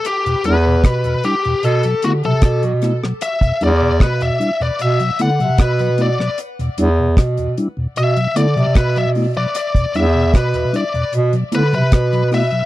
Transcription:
<<
  \new Staff \with { instrumentName = "Lead electric guitar" } { \time 4/4 \key e \minor \tempo 4 = 76 g'8 b'4 g'8 a'8 fis'16 a'8 r8. | e''8 d''8 b'16 e''8 d''16 e''8 fis''8 b'8 d''8 | r2 e''8 d''8 b'16 e''8 d''16 | d''8 e''8 b'8 d''8 r8 b'16 b'8. e''8 | }
  \new Staff \with { instrumentName = "Tonewheel organ" } { \time 4/4 \key e \minor r8 <g d' e'>8 r8 <g d' e'>8 r8 <a b e'>8 r8 <a b e'>8 | r8 <g d' e'>8 r8 <g d' e'>8 r8 <a b e'>8 r8 <a b e'>8 | r8 <g d' e'>8 r8 <g d' e'>8 r8 <a b e'>8 r8 <a b e'>8 | r8 <g d' e'>8 r8 <g d' e'>8 r8 <a b e'>8 r8 <a b e'>8 | }
  \new Staff \with { instrumentName = "Tonewheel organ" } { \clef bass \time 4/4 \key e \minor r16 <e, b,>16 r16 <e, b,>16 r16 <e, b,>16 r16 <e, b,>16 r16 <b, fis>16 r16 <b, fis>16 r16 <b, fis>16 r16 <b, fis>16 | r16 <e, b,>16 r16 <e, b,>16 r16 <e, b,>16 r16 <e, b,>16 r16 <b, fis>16 r16 <b, fis>16 r16 <b, fis>16 r16 <b, fis>16 | r16 <e, b,>16 r16 <e, b,>16 r16 <e, b,>16 r16 <e, b,>16 r16 <b, fis>16 r16 <b, fis>16 r16 <b, fis>16 r16 <b, fis>16 | r16 <e, b,>16 r16 <e, b,>16 r16 <e, b,>16 r16 <e, b,>16 r16 <b, fis>16 r16 <b, fis>16 r16 <b, fis>16 r16 <b, fis>16 | }
  \new Staff \with { instrumentName = "Bass clarinet" } { \clef bass \time 4/4 \key e \minor r8 e,8 b,8 r8 b,16 r16 d16 c16 b,8. r16 | r8 e,8 b,8 r8 b,16 r16 d16 c16 b,8. r16 | r8 e,8 b,8 r8 b,16 r16 d16 c16 b,8. r16 | r8 e,8 b,8 r8 b,16 r16 d16 c16 b,8. r16 | }
  \new DrumStaff \with { instrumentName = "Drums" } \drummode { \time 4/4 hh16 hh16 hh8 <hh bd ss>16 hh16 hh16 hh16 hh16 hh16 hh16 hh16 <hh bd ss>16 hh16 <hh ss>16 ss16 | hh16 <hh bd>16 hh8 <hh bd ss>16 hh16 hh16 hh16 hh16 hh16 hh16 hh16 <hh bd ss>16 hh16 hh16 ss16 | hh16 hh16 hh8 <hh bd ss>16 hh16 hh8 hh16 hh16 hh16 hh16 <hh bd ss>16 hh16 hho16 hh16 | hh16 <hh bd>16 hh8 <hh bd ss>16 hh16 hh16 hh16 hh16 hh16 hh16 hh16 <hh bd ss>16 hh16 <hho ss>16 hh16 | }
>>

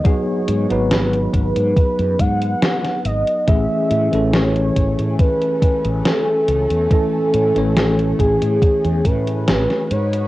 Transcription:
<<
  \new Staff \with { instrumentName = "Soft synth lead" } { \time 4/4 \key a \lydian \tempo 4 = 70 cis''4 b'4 b'8 fis''4 dis''8 | e''4 cis''4 b'4 a'4 | a'4. gis'4 b'4 cis''8 | }
  \new Staff \with { instrumentName = "String section" } { \time 4/4 \key a \lydian r1 | <a cis'>1~ | <a cis'>2.~ <a cis'>8 <dis' fis' b'>8 | }
  \new Staff \with { instrumentName = "Tine electric piano" } { \time 4/4 \key a \lydian <fis b dis' gis'>8. <fis b dis' b'>2.~ <fis b dis' b'>16 | <e a cis' gis'>8. <e a cis' a'>2.~ <e a cis' a'>16 | <e a cis' a'>8. <e a cis' cis''>2~ <e a cis' cis''>8. r8 | }
  \new Staff \with { instrumentName = "Fretless electric bass" } { \clef bass \time 4/4 \key a \lydian r8 gis,16 gis,,8. gis,,16 gis,16 r16 fis,16 gis,8 r8 gis,,16 r16 | a,,16 r16 a,16 a,,8. a,,16 a,16 r8. a,,16 r8 cis,16 e,16 | r8 a,16 a,,8. a,,16 a,16 r16 e,16 a,8 a,,16 r16 gis,8 | }
  \new DrumStaff \with { instrumentName = "Drums" } \drummode { \time 4/4 <hh bd>8 hh16 hh16 <hh sn>16 hh16 <hh bd>16 hh16 <hh bd>16 hh16 <hh bd>16 hh16 <hh sn>16 <hh sn>16 hh16 hh16 | <hh bd>8 hh16 hh16 <hh sn>16 hh16 <hh bd>16 hh16 <hh bd>16 hh16 <hh bd>16 hh16 <hh sn>8 hh16 hh16 | <hh bd>8 hh16 hh16 <hh sn>16 hh16 <hh bd>16 hh16 <hh bd>16 hh16 <hh bd>16 hh16 <hh sn>16 sn16 hh16 hh16 | }
>>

